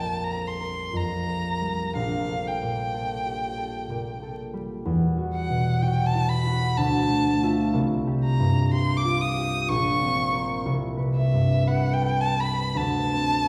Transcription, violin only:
0, 0, Header, 1, 2, 480
1, 0, Start_track
1, 0, Tempo, 991736
1, 950, Time_signature, 3, 2, 24, 8
1, 1435, Tempo, 953895
1, 3355, Tempo, 970874
1, 5275, Tempo, 1018676
1, 5755, Tempo, 1086957
1, 6235, Tempo, 1171875
1, 6526, End_track
2, 0, Start_track
2, 0, Title_t, "Violin"
2, 0, Program_c, 0, 40
2, 0, Note_on_c, 0, 81, 57
2, 113, Note_on_c, 0, 82, 52
2, 120, Note_off_c, 0, 81, 0
2, 225, Note_on_c, 0, 84, 55
2, 232, Note_off_c, 0, 82, 0
2, 467, Note_on_c, 0, 82, 60
2, 474, Note_off_c, 0, 84, 0
2, 945, Note_off_c, 0, 82, 0
2, 948, Note_on_c, 0, 77, 62
2, 1194, Note_on_c, 0, 79, 51
2, 1202, Note_off_c, 0, 77, 0
2, 2146, Note_off_c, 0, 79, 0
2, 2633, Note_on_c, 0, 78, 60
2, 2869, Note_on_c, 0, 79, 64
2, 2877, Note_off_c, 0, 78, 0
2, 2992, Note_on_c, 0, 81, 72
2, 2999, Note_off_c, 0, 79, 0
2, 3107, Note_on_c, 0, 83, 76
2, 3114, Note_off_c, 0, 81, 0
2, 3350, Note_on_c, 0, 81, 78
2, 3358, Note_off_c, 0, 83, 0
2, 3830, Note_off_c, 0, 81, 0
2, 4076, Note_on_c, 0, 82, 60
2, 4299, Note_off_c, 0, 82, 0
2, 4322, Note_on_c, 0, 84, 71
2, 4437, Note_on_c, 0, 86, 80
2, 4444, Note_off_c, 0, 84, 0
2, 4555, Note_on_c, 0, 87, 71
2, 4562, Note_off_c, 0, 86, 0
2, 4791, Note_on_c, 0, 85, 80
2, 4799, Note_off_c, 0, 87, 0
2, 5272, Note_off_c, 0, 85, 0
2, 5509, Note_on_c, 0, 76, 63
2, 5750, Note_on_c, 0, 78, 65
2, 5757, Note_off_c, 0, 76, 0
2, 5863, Note_on_c, 0, 79, 70
2, 5869, Note_off_c, 0, 78, 0
2, 5984, Note_on_c, 0, 81, 74
2, 5991, Note_off_c, 0, 79, 0
2, 6071, Note_on_c, 0, 83, 70
2, 6077, Note_off_c, 0, 81, 0
2, 6233, Note_on_c, 0, 81, 80
2, 6240, Note_off_c, 0, 83, 0
2, 6526, Note_off_c, 0, 81, 0
2, 6526, End_track
0, 0, End_of_file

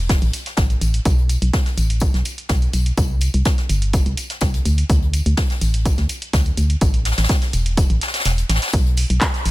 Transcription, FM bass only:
0, 0, Header, 1, 2, 480
1, 0, Start_track
1, 0, Tempo, 480000
1, 1056, Time_signature, 4, 2, 24, 8
1, 9509, End_track
2, 0, Start_track
2, 0, Title_t, "FM bass"
2, 0, Program_c, 0, 39
2, 0, Note_on_c, 0, 28, 87
2, 172, Note_off_c, 0, 28, 0
2, 220, Note_on_c, 0, 33, 100
2, 307, Note_off_c, 0, 33, 0
2, 575, Note_on_c, 0, 33, 94
2, 760, Note_off_c, 0, 33, 0
2, 814, Note_on_c, 0, 33, 95
2, 1000, Note_off_c, 0, 33, 0
2, 1055, Note_on_c, 0, 35, 98
2, 1373, Note_off_c, 0, 35, 0
2, 1420, Note_on_c, 0, 35, 92
2, 1507, Note_off_c, 0, 35, 0
2, 1775, Note_on_c, 0, 33, 87
2, 2092, Note_off_c, 0, 33, 0
2, 2141, Note_on_c, 0, 35, 99
2, 2228, Note_off_c, 0, 35, 0
2, 2496, Note_on_c, 0, 35, 99
2, 2680, Note_off_c, 0, 35, 0
2, 2735, Note_on_c, 0, 35, 95
2, 2920, Note_off_c, 0, 35, 0
2, 2975, Note_on_c, 0, 36, 95
2, 3293, Note_off_c, 0, 36, 0
2, 3342, Note_on_c, 0, 36, 92
2, 3428, Note_off_c, 0, 36, 0
2, 3695, Note_on_c, 0, 31, 89
2, 4013, Note_off_c, 0, 31, 0
2, 4062, Note_on_c, 0, 36, 100
2, 4148, Note_off_c, 0, 36, 0
2, 4416, Note_on_c, 0, 36, 97
2, 4601, Note_off_c, 0, 36, 0
2, 4655, Note_on_c, 0, 38, 94
2, 4840, Note_off_c, 0, 38, 0
2, 4896, Note_on_c, 0, 38, 96
2, 5213, Note_off_c, 0, 38, 0
2, 5261, Note_on_c, 0, 38, 93
2, 5348, Note_off_c, 0, 38, 0
2, 5615, Note_on_c, 0, 33, 88
2, 5932, Note_off_c, 0, 33, 0
2, 5980, Note_on_c, 0, 38, 102
2, 6067, Note_off_c, 0, 38, 0
2, 6335, Note_on_c, 0, 38, 97
2, 6520, Note_off_c, 0, 38, 0
2, 6575, Note_on_c, 0, 38, 93
2, 6760, Note_off_c, 0, 38, 0
2, 6815, Note_on_c, 0, 33, 98
2, 7132, Note_off_c, 0, 33, 0
2, 7181, Note_on_c, 0, 33, 93
2, 7268, Note_off_c, 0, 33, 0
2, 7535, Note_on_c, 0, 28, 87
2, 7853, Note_off_c, 0, 28, 0
2, 7900, Note_on_c, 0, 33, 99
2, 7988, Note_off_c, 0, 33, 0
2, 8255, Note_on_c, 0, 28, 92
2, 8440, Note_off_c, 0, 28, 0
2, 8495, Note_on_c, 0, 33, 97
2, 8590, Note_off_c, 0, 33, 0
2, 8734, Note_on_c, 0, 35, 99
2, 9052, Note_off_c, 0, 35, 0
2, 9101, Note_on_c, 0, 35, 91
2, 9188, Note_off_c, 0, 35, 0
2, 9456, Note_on_c, 0, 33, 87
2, 9509, Note_off_c, 0, 33, 0
2, 9509, End_track
0, 0, End_of_file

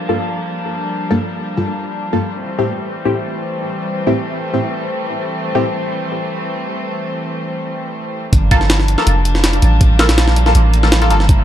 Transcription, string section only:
0, 0, Header, 1, 2, 480
1, 0, Start_track
1, 0, Tempo, 370370
1, 1194, Time_signature, 4, 2, 24, 8
1, 14829, End_track
2, 0, Start_track
2, 0, Title_t, "String section"
2, 0, Program_c, 0, 48
2, 0, Note_on_c, 0, 53, 75
2, 0, Note_on_c, 0, 55, 64
2, 0, Note_on_c, 0, 58, 65
2, 0, Note_on_c, 0, 62, 78
2, 3062, Note_off_c, 0, 58, 0
2, 3062, Note_off_c, 0, 62, 0
2, 3063, Note_off_c, 0, 53, 0
2, 3109, Note_on_c, 0, 60, 82
2, 3110, Note_on_c, 0, 52, 75
2, 3110, Note_on_c, 0, 57, 68
2, 10739, Note_off_c, 0, 60, 0
2, 10740, Note_off_c, 0, 52, 0
2, 10740, Note_off_c, 0, 57, 0
2, 10743, Note_off_c, 0, 55, 0
2, 10793, Note_on_c, 0, 53, 77
2, 10793, Note_on_c, 0, 55, 69
2, 10794, Note_on_c, 0, 58, 73
2, 10794, Note_on_c, 0, 62, 85
2, 14595, Note_off_c, 0, 62, 0
2, 14635, Note_on_c, 0, 64, 89
2, 14829, Note_off_c, 0, 53, 0
2, 14829, Note_off_c, 0, 55, 0
2, 14829, Note_off_c, 0, 58, 0
2, 14829, Note_off_c, 0, 64, 0
2, 14829, End_track
0, 0, End_of_file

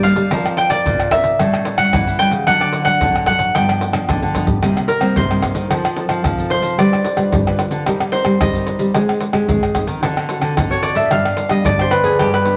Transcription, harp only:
0, 0, Header, 1, 2, 480
1, 0, Start_track
1, 0, Tempo, 539568
1, 284, Time_signature, 4, 2, 24, 8
1, 11181, End_track
2, 0, Start_track
2, 0, Title_t, "Harp"
2, 0, Program_c, 0, 46
2, 0, Note_on_c, 0, 74, 79
2, 0, Note_on_c, 0, 82, 78
2, 29, Note_on_c, 0, 77, 106
2, 329, Note_off_c, 0, 82, 0
2, 513, Note_on_c, 0, 79, 100
2, 567, Note_off_c, 0, 79, 0
2, 618, Note_off_c, 0, 74, 0
2, 622, Note_on_c, 0, 74, 96
2, 990, Note_on_c, 0, 76, 96
2, 1044, Note_off_c, 0, 77, 0
2, 1580, Note_on_c, 0, 78, 89
2, 1947, Note_on_c, 0, 79, 105
2, 2000, Note_off_c, 0, 78, 0
2, 2013, Note_off_c, 0, 79, 0
2, 2196, Note_on_c, 0, 78, 106
2, 2265, Note_off_c, 0, 74, 0
2, 2318, Note_on_c, 0, 74, 76
2, 2383, Note_off_c, 0, 74, 0
2, 2523, Note_off_c, 0, 76, 0
2, 2529, Note_off_c, 0, 78, 0
2, 2532, Note_on_c, 0, 78, 88
2, 2904, Note_off_c, 0, 78, 0
2, 2908, Note_on_c, 0, 78, 91
2, 3157, Note_on_c, 0, 79, 84
2, 3211, Note_off_c, 0, 78, 0
2, 4340, Note_on_c, 0, 70, 84
2, 4539, Note_off_c, 0, 79, 0
2, 4597, Note_on_c, 0, 72, 73
2, 5785, Note_off_c, 0, 72, 0
2, 5788, Note_on_c, 0, 72, 81
2, 6039, Note_on_c, 0, 74, 92
2, 6227, Note_off_c, 0, 70, 0
2, 7220, Note_off_c, 0, 72, 0
2, 7224, Note_on_c, 0, 72, 82
2, 7478, Note_on_c, 0, 75, 72
2, 7532, Note_off_c, 0, 74, 0
2, 8985, Note_off_c, 0, 72, 0
2, 9065, Note_off_c, 0, 75, 0
2, 9525, Note_on_c, 0, 73, 81
2, 9631, Note_on_c, 0, 74, 88
2, 9684, Note_off_c, 0, 73, 0
2, 9752, Note_on_c, 0, 76, 80
2, 9892, Note_on_c, 0, 77, 95
2, 9945, Note_off_c, 0, 76, 0
2, 10235, Note_on_c, 0, 75, 75
2, 10288, Note_off_c, 0, 74, 0
2, 10370, Note_on_c, 0, 74, 84
2, 10423, Note_off_c, 0, 75, 0
2, 10506, Note_on_c, 0, 72, 75
2, 10595, Note_on_c, 0, 71, 88
2, 10648, Note_off_c, 0, 72, 0
2, 10708, Note_on_c, 0, 68, 74
2, 10848, Note_on_c, 0, 67, 70
2, 10901, Note_off_c, 0, 68, 0
2, 10972, Note_off_c, 0, 71, 0
2, 10976, Note_on_c, 0, 71, 83
2, 11181, Note_off_c, 0, 67, 0
2, 11181, Note_off_c, 0, 71, 0
2, 11181, Note_off_c, 0, 74, 0
2, 11181, Note_off_c, 0, 77, 0
2, 11181, End_track
0, 0, End_of_file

